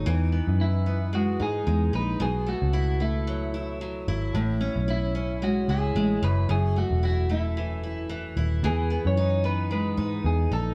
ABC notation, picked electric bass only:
X:1
M:4/4
L:1/16
Q:"Swing 16ths" 1/4=112
K:E
V:1 name="Picked electric bass" clef=bass
E,,3 F,,6- F,, G,,2 E,,2 ^A,,,2 | B,,,3 C,,8- C,,3 G,,,2 | A,,,3 B,,,6- B,,, C,,2 A,,,2 F,,,2 | F,,,3 E,,,8- E,,,3 D,,,2 |
E,,3 F,,6- F,, G,,2 E,,2 ^A,,,2 |]